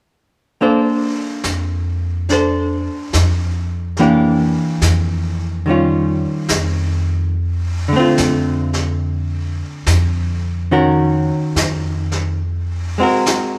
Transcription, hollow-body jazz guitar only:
0.61 3.98 A#3 soft
0.61 2.29 D4 soft
0.61 2.30 A4 soft
0.61 2.31 C5 soft
2.30 3.98 D4 soft
2.30 3.99 A4 soft
2.30 4.00 C5 soft
3.99 5.65 E3 soft
3.99 5.67 A#3 soft
3.99 5.67 D4 soft
3.99 5.67 G4 soft
5.66 7.34 D#3 soft
5.66 7.35 G3 soft
5.66 7.36 C#4 soft
5.70 7.36 F4 soft
7.88 10.70 D3 soft
7.93 10.72 A3 soft
7.93 10.72 C4 soft
8.00 10.72 F4 soft
10.71 12.40 D#3 soft
10.71 12.41 C#4 soft
10.71 12.41 F#4 soft
10.71 12.41 A#4 soft
12.98 13.58 G#3 soft
12.98 13.58 C4 soft
12.98 13.58 F#4 soft
13.03 13.58 A#4 soft

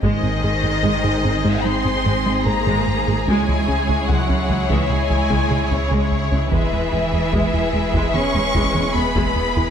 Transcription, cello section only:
0.04 1.62 D#3 medium
1.66 2.47 C4 medium
2.47 3.28 A#3 medium
3.28 4.07 G#3 soft
4.09 4.70 F#3 medium
4.69 4.89 E3 soft
4.90 5.69 G#3 medium
5.71 6.52 C#3 soft
6.53 8.11 E3 medium
8.15 8.94 C#4 medium
8.96 9.70 B3 medium

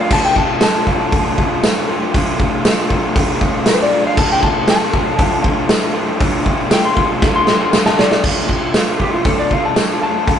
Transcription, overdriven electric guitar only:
0.00 0.11 D3 medium
0.00 0.12 A3 medium
0.00 0.13 F4 medium
0.09 0.90 D2 medium
0.09 0.59 A2 loud
0.09 0.39 D3 medium
0.09 0.38 A3 loud
0.09 0.36 F4 medium
0.36 0.61 D3 medium
0.36 0.63 A3 medium
0.36 0.64 F4 medium
0.61 0.88 A2 medium
0.61 0.88 D3 medium
0.61 0.88 A3 medium
0.61 0.87 F4 medium
0.87 1.41 D2 medium
0.87 1.11 A2 medium
0.87 1.13 D3 medium
0.87 1.14 A3 medium
0.87 1.15 F4 medium
1.12 1.39 A2 medium
1.12 1.39 D3 medium
1.12 1.38 A3 medium
1.12 1.37 F4 medium
1.38 2.14 D2 medium
1.38 1.62 A2 medium
1.38 1.65 D3 medium
1.38 1.66 A3 medium
1.38 1.67 F4 medium
1.63 2.14 A2 medium
1.63 1.92 D3 medium
1.63 1.91 A3 medium
1.63 1.88 F4 medium
1.89 2.15 D3 medium
1.89 2.17 A3 medium
1.89 2.18 F4 medium
2.14 2.93 D2 medium
2.14 2.63 A2 loud
2.14 2.43 D3 loud
2.14 2.41 A3 loud
2.14 2.39 F4 loud
2.39 2.65 D3 medium
2.39 2.66 A3 medium
2.39 2.68 F4 medium
2.64 2.91 A2 medium
2.64 2.92 D3 medium
2.64 2.91 A3 medium
2.64 2.89 F4 medium
2.90 3.14 A2 medium
2.90 3.16 D3 medium
2.90 3.18 A3 medium
2.90 3.18 F4 medium
2.94 3.44 D2 medium
3.15 3.42 A2 medium
3.15 3.42 D3 medium
3.15 3.42 A3 medium
3.15 3.41 F4 medium
3.41 4.16 D2 medium
3.41 3.64 A2 medium
3.41 3.67 D3 medium
3.41 3.68 A3 medium
3.41 3.69 F4 medium
3.66 4.17 A2 medium
3.66 3.94 D3 medium
3.66 3.92 A3 medium
3.66 3.91 F4 medium
3.91 4.18 D3 medium
3.91 4.19 A3 medium
3.91 4.20 F4 medium
4.17 4.96 D2 loud
4.17 4.66 A2 medium
4.17 4.46 D3 loud
4.17 4.44 A3 loud
4.21 4.42 F4 loud
4.43 4.69 D3 medium
4.43 4.70 A3 medium
4.43 4.71 F4 medium
4.68 4.95 A2 medium
4.68 4.95 D3 medium
4.68 4.94 A3 medium
4.72 4.92 F4 medium
4.93 5.46 D2 medium
4.93 5.18 A2 medium
4.93 5.20 D3 medium
4.93 5.21 A3 medium
4.93 5.22 F4 medium
5.19 5.44 A2 medium
5.19 5.44 D3 medium
5.19 5.44 A3 medium
5.19 5.42 F4 medium
5.43 6.19 D2 medium
5.43 5.67 A2 medium
5.43 5.69 D3 medium
5.43 5.70 A3 medium
5.43 5.71 F4 medium
5.68 6.19 A2 medium
5.68 5.97 D3 medium
5.68 5.96 A3 medium
5.68 5.93 F4 medium
5.94 6.21 A3 medium
5.94 6.21 F4 medium
5.98 6.19 D3 medium
6.19 6.71 D2 loud
6.19 6.68 A2 loud
6.19 6.47 D3 medium
6.19 6.45 A3 loud
6.19 6.44 F4 loud
6.45 6.70 D3 medium
6.45 6.71 A3 medium
6.45 6.72 F4 medium
6.70 6.97 A2 medium
6.70 6.96 D3 medium
6.70 6.95 A3 medium
6.70 6.94 F4 medium
6.95 7.20 A2 medium
6.95 7.21 D3 medium
6.95 7.23 A3 medium
6.95 7.24 F4 medium
6.99 7.49 D2 medium
7.21 7.49 A2 medium
7.21 7.48 D3 medium
7.21 7.47 A3 medium
7.21 7.46 F4 medium
7.47 8.00 D2 medium
7.47 7.71 A2 medium
7.47 7.73 D3 medium
7.47 7.73 A3 medium
7.47 7.75 F4 medium
7.72 8.22 A2 medium
7.72 8.00 D3 medium
7.72 7.98 A3 medium
7.72 7.96 F4 loud
7.97 8.23 A3 medium
7.97 8.22 F4 medium
8.02 8.23 D3 medium
8.23 8.73 D2 medium
8.23 8.74 A2 medium
8.23 8.52 D3 medium
8.23 8.50 A3 medium
8.23 8.48 F4 loud
8.48 8.76 A3 medium
8.48 8.76 F4 medium
8.52 8.76 D3 medium
8.74 9.53 D2 medium
8.74 9.24 A2 medium
8.74 9.03 D3 loud
8.74 9.01 A3 loud
8.74 8.99 F4 loud
8.99 9.26 D3 medium
8.99 9.27 A3 medium
8.99 9.28 F4 medium
9.25 9.51 A2 medium
9.25 9.52 D3 medium
9.25 9.51 A3 medium
9.25 9.49 F4 medium
9.50 10.25 D2 medium
9.50 9.75 A2 medium
9.50 9.77 D3 medium
9.50 9.78 A3 medium
9.50 9.79 F4 medium
9.76 10.25 A2 medium
9.76 10.05 D3 medium
9.76 10.03 A3 medium
9.76 10.01 F4 medium
10.01 10.27 D3 medium
10.01 10.28 A3 medium
10.01 10.29 F4 medium
10.25 10.39 D2 medium
10.25 10.39 A2 medium
10.25 10.39 D3 medium
10.25 10.39 A3 loud
10.25 10.39 F4 loud

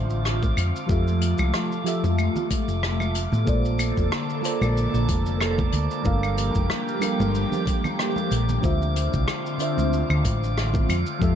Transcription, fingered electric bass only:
0.00 0.52 A1 medium
0.57 0.71 F2 medium
0.89 1.33 F2 medium
1.39 1.50 C2 medium
2.04 2.28 F2 medium
2.68 3.26 F1 medium
3.32 3.44 A2 medium
3.47 3.91 A#1 medium
3.97 4.09 F1 medium
4.61 4.86 A#1 medium
4.94 5.05 A#1 medium
5.09 5.68 F1 medium
5.73 5.87 D2 medium
6.06 6.49 G1 medium
6.56 6.67 F1 medium
7.20 7.44 G1 medium
8.31 8.57 A#1 medium
8.64 9.07 D2 medium
9.14 9.25 C2 medium
9.78 10.02 D2 medium
10.10 10.21 D2 loud
10.25 10.84 A1 medium
10.89 11.03 F2 medium
11.21 11.35 F2 medium

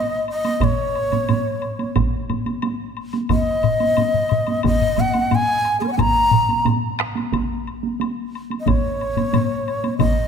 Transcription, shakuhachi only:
0.00 0.28 D#5 medium
0.30 0.65 D#5 medium
0.64 1.97 C#5 medium
3.32 4.62 D#5 medium
4.66 5.01 D#5 medium
5.00 5.36 F#5 medium
5.35 5.79 G#5 medium
5.80 5.83 G#4 soft
5.80 5.87 A#4 soft
5.88 5.91 C#5 soft
5.92 5.97 F#5 medium
5.97 6.00 G#5 medium
5.97 6.66 A#5 medium
8.60 8.69 D#5 medium
8.68 9.98 C#5 medium
9.98 10.28 D#5 medium

